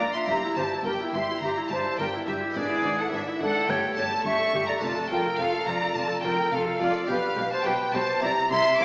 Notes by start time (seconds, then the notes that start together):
Already playing: A#3 D4 F4
0.00 A#2 F4 D5 A#5
0.13 D4 E5 C6
0.23 A#3 E4 A#5
0.28 G1 G2 G4 E5 A#5
0.44 E4
0.56 G1 G2 G4 C5 A5
0.72 E4
0.84 G1 G2 G4 A#4 G5
1.01 E4
1.12 G1 G2 G4 E5 C6
1.30 E4
1.41 G1 G2 G4 E5 A#5
1.58 E4
1.69 G1 G2 G4 C5 A5
1.85 E4
1.97 G1 G2 G4 A#4 G5
2.14 E4
2.26 G1 G2 G4 E5
2.42 E4
2.50 G#3 B3 E4
2.54 G#1 G#2 D4 G#4 D5
2.70 E4
2.83 G#1 G#2 D4
2.98 E4 A4 F#5
3.11 G#1 G#2 D4 G#4 E5
3.27 E4
3.39 G#1 G#2 D4 A4 F#5
3.57 E4
3.64 G1 A3 E4 G5
3.68 G2 G4 C#5 G5
3.85 A4
3.96 G1 G2 G4 C#5 A5
4.13 A4
4.25 G1 G2 G4 E5 C#6
4.41 A4
4.53 G1 G2 G4
4.67 A4 D5 A#5
4.77 A3 D4 F4
4.81 F1 F2 F4 D5 A5
4.97 A4
5.09 F1 F2 F4 A#4 G5
5.24 A4
5.38 F1 F2 F4 A4 F5
5.54 A4
5.67 F1 F2 F4 D5 A#5
5.80 A4
5.95 F1 F2 F4 D5 A5
6.08 A4
6.22 F1 F2 F4 A#4 G5
6.37 A4
6.51 F1 F2 F4 A4 F5
6.66 A4
6.79 F1 F2 F4 D5
6.93 A4
7.06 B1 B2 D4 G4 B4 F5
7.36 B1 B2 G4
7.52 C5 A5
7.64 B1 B2 G4 B4 G5
7.93 B1 B2 G4 C5 A5
8.19 C2 C3 E4 G4 A#5
8.23 D5 A#5
8.50 C2 C3 E4 E5 C6
8.78 C2 C3 E4 F5 D6